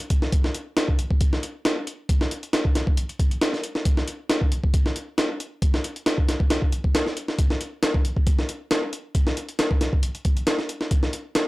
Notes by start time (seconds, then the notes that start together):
0.10 kick, closed hi-hat
0.22 snare
0.32 kick, closed hi-hat
0.44 snare
0.54 closed hi-hat
0.77 snare, closed hi-hat
0.88 kick
0.99 closed hi-hat
1.11 kick
1.21 kick, closed hi-hat
1.33 snare
1.43 closed hi-hat
1.65 snare, closed hi-hat
1.87 closed hi-hat
2.09 kick, closed hi-hat
2.21 snare
2.31 closed hi-hat
2.43 closed hi-hat
2.53 snare, closed hi-hat
2.65 kick
2.75 snare, closed hi-hat
2.87 kick
2.97 closed hi-hat
3.09 closed hi-hat
3.19 kick, closed hi-hat
3.31 closed hi-hat
3.41 snare, closed hi-hat
3.53 snare
3.63 closed hi-hat
3.75 snare
3.85 kick, closed hi-hat
3.97 snare
4.08 closed hi-hat
4.30 snare, closed hi-hat
4.41 kick
4.52 closed hi-hat
4.64 kick
4.74 kick, closed hi-hat
4.86 snare
4.96 closed hi-hat
5.18 snare, closed hi-hat
5.40 closed hi-hat
5.62 kick, closed hi-hat
5.74 snare
5.84 closed hi-hat
5.96 closed hi-hat
6.06 snare, closed hi-hat
6.18 kick
6.29 snare, closed hi-hat
6.40 kick
6.50 snare, closed hi-hat
6.62 kick
6.72 closed hi-hat
6.84 kick
6.95 snare, closed hi-hat
7.07 snare
7.17 closed hi-hat
7.28 snare
7.39 kick, closed hi-hat
7.50 snare
7.61 closed hi-hat
7.83 snare, closed hi-hat
7.94 kick
8.05 closed hi-hat
8.17 kick
8.27 kick, closed hi-hat
8.39 snare
8.49 closed hi-hat
8.71 snare, closed hi-hat
8.93 closed hi-hat
9.15 kick, closed hi-hat
9.27 snare
9.37 closed hi-hat
9.49 closed hi-hat
9.59 snare, closed hi-hat
9.71 kick
9.81 snare, closed hi-hat
9.93 kick
10.03 closed hi-hat
10.15 closed hi-hat
10.25 kick, closed hi-hat
10.37 closed hi-hat
10.47 snare, closed hi-hat
10.59 snare
10.69 closed hi-hat
10.81 snare
10.91 kick, closed hi-hat
11.03 snare
11.13 closed hi-hat
11.35 snare, closed hi-hat